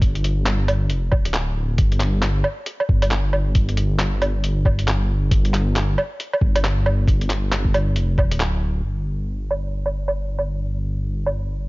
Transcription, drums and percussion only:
0.02 kick loud
0.02 closed hi-hat medium
0.15 closed hi-hat soft
0.24 closed hi-hat medium
0.46 clap loud
0.46 closed hi-hat medium
0.68 closed hi-hat soft
0.68 low woodblock medium
0.90 closed hi-hat medium
1.12 kick loud
1.12 low woodblock soft
1.25 closed hi-hat medium
1.34 clap loud
1.34 closed hi-hat medium
1.78 kick loud
1.78 closed hi-hat medium
1.92 closed hi-hat soft
2.00 clap medium
2.00 closed hi-hat medium
2.22 clap loud
2.22 closed hi-hat medium
2.44 low woodblock medium
2.66 closed hi-hat medium
2.80 low woodblock medium
2.89 kick loud
3.02 closed hi-hat medium
3.02 low woodblock medium
3.11 clap loud
3.11 closed hi-hat medium
3.33 low woodblock medium
3.55 kick loud
3.55 closed hi-hat medium
3.69 closed hi-hat soft
3.77 closed hi-hat medium
3.99 clap loud
3.99 closed hi-hat medium
4.22 closed hi-hat soft
4.22 low woodblock medium
4.44 closed hi-hat medium
4.65 kick loud
4.65 low woodblock medium
4.79 closed hi-hat medium
4.88 clap loud
4.88 closed hi-hat medium
5.31 kick loud
5.31 closed hi-hat medium
5.45 closed hi-hat soft
5.54 clap medium
5.54 closed hi-hat medium
5.76 clap loud
5.76 closed hi-hat medium
5.98 low woodblock medium
6.20 closed hi-hat medium
6.33 low woodblock medium
6.41 kick loud
6.56 closed hi-hat medium
6.56 low woodblock medium
6.65 clap loud
6.65 closed hi-hat medium
6.86 low woodblock medium
7.08 kick loud
7.08 closed hi-hat medium
7.21 closed hi-hat soft
7.30 clap medium
7.30 closed hi-hat medium
7.52 clap loud
7.52 closed hi-hat medium
7.65 kick medium
7.74 closed hi-hat soft
7.74 low woodblock medium
7.96 closed hi-hat medium
8.18 kick loud
8.18 low woodblock medium
8.31 closed hi-hat medium
8.40 clap loud
8.40 closed hi-hat medium
9.51 low woodblock medium
9.86 low woodblock soft
10.08 low woodblock medium
10.39 low woodblock soft
11.26 low woodblock medium

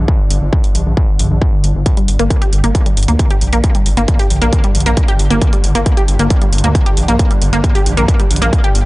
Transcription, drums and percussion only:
0.08 kick loud
0.30 open hi-hat loud
0.53 kick loud
0.64 open hi-hat medium
0.75 open hi-hat loud
0.97 kick loud
1.19 open hi-hat loud
1.42 kick loud
1.64 open hi-hat medium
1.86 kick loud
1.86 closed hi-hat medium
1.97 closed hi-hat medium
2.08 open hi-hat loud
2.19 closed hi-hat soft
2.30 kick loud
2.30 closed hi-hat medium
2.42 closed hi-hat medium
2.53 open hi-hat loud
2.64 closed hi-hat medium
2.75 kick loud
2.75 closed hi-hat medium
2.86 closed hi-hat medium
2.97 open hi-hat loud
3.03 closed hi-hat medium
3.08 closed hi-hat medium
3.19 kick loud
3.19 closed hi-hat medium
3.30 closed hi-hat medium
3.41 open hi-hat loud
3.53 closed hi-hat medium
3.64 kick loud
3.64 closed hi-hat medium
3.75 closed hi-hat medium
3.86 open hi-hat loud
3.97 closed hi-hat medium
4.08 kick loud
4.08 closed hi-hat medium
4.19 open hi-hat medium
4.30 open hi-hat loud
4.42 closed hi-hat medium
4.53 kick loud
4.53 closed hi-hat medium
4.64 closed hi-hat medium
4.75 open hi-hat loud
4.80 closed hi-hat medium
4.86 closed hi-hat medium
4.97 kick loud
4.97 closed hi-hat medium
5.08 closed hi-hat medium
5.19 open hi-hat loud
5.31 closed hi-hat medium
5.42 kick loud
5.42 closed hi-hat medium
5.53 closed hi-hat medium
5.64 open hi-hat loud
5.75 closed hi-hat medium
5.86 kick loud
5.86 closed hi-hat medium
5.97 closed hi-hat medium
6.08 open hi-hat loud
6.19 closed hi-hat medium
6.30 kick loud
6.30 closed hi-hat medium
6.42 closed hi-hat medium
6.53 open hi-hat loud
6.58 closed hi-hat medium
6.64 closed hi-hat medium
6.75 kick loud
6.75 closed hi-hat medium
6.86 closed hi-hat medium
6.97 open hi-hat loud
7.08 closed hi-hat medium
7.19 kick loud
7.19 closed hi-hat medium
7.31 closed hi-hat soft
7.42 open hi-hat loud
7.53 closed hi-hat soft
7.64 kick loud
7.64 closed hi-hat medium
7.75 open hi-hat medium
7.86 open hi-hat loud
7.97 closed hi-hat medium
8.08 kick loud
8.08 closed hi-hat medium
8.20 closed hi-hat soft
8.31 open hi-hat loud
8.36 closed hi-hat medium
8.42 closed hi-hat medium
8.53 kick loud
8.53 closed hi-hat medium
8.64 closed hi-hat medium
8.75 open hi-hat loud

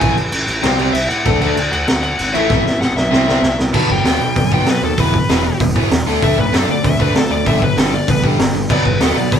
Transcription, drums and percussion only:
0.01 kick loud
0.01 crash medium
0.17 crash medium
0.32 crash medium
0.48 crash medium
0.63 snare loud
0.63 crash medium
0.79 crash medium
0.95 crash medium
1.11 crash medium
1.25 kick loud
1.25 crash medium
1.41 crash medium
1.57 crash medium
1.73 crash medium
1.88 snare loud
1.88 crash medium
2.03 crash medium
2.19 crash medium
2.35 crash medium
2.50 kick loud
2.50 snare medium
2.66 snare medium
2.81 snare medium
2.96 snare medium
3.13 snare medium
3.28 snare medium
3.43 snare loud
3.59 snare medium
3.74 kick loud
3.74 crash loud
3.90 kick medium
4.05 snare loud
4.05 open hi-hat medium
4.36 kick loud
4.36 open hi-hat medium
4.52 kick medium
4.66 snare loud
4.66 open hi-hat medium
4.97 kick loud
4.97 open hi-hat medium
5.14 kick medium
5.29 snare loud
5.29 open hi-hat medium
5.60 kick loud
5.60 open hi-hat medium
5.76 kick medium
5.91 snare loud
5.91 open hi-hat medium
6.22 kick loud
6.22 open hi-hat medium
6.38 kick medium
6.54 snare loud
6.54 open hi-hat medium
6.85 kick loud
6.85 open hi-hat medium
7.00 kick medium
7.15 snare loud
7.15 open hi-hat medium
7.46 kick loud
7.46 open hi-hat medium
7.62 kick medium
7.78 snare loud
7.78 open hi-hat medium
8.08 kick loud
8.08 open hi-hat medium
8.24 kick medium
8.39 snare loud
8.39 open hi-hat medium
8.70 kick loud
8.70 crash loud
8.85 kick medium
9.00 snare loud
9.00 open hi-hat medium
9.32 kick loud
9.32 open hi-hat medium

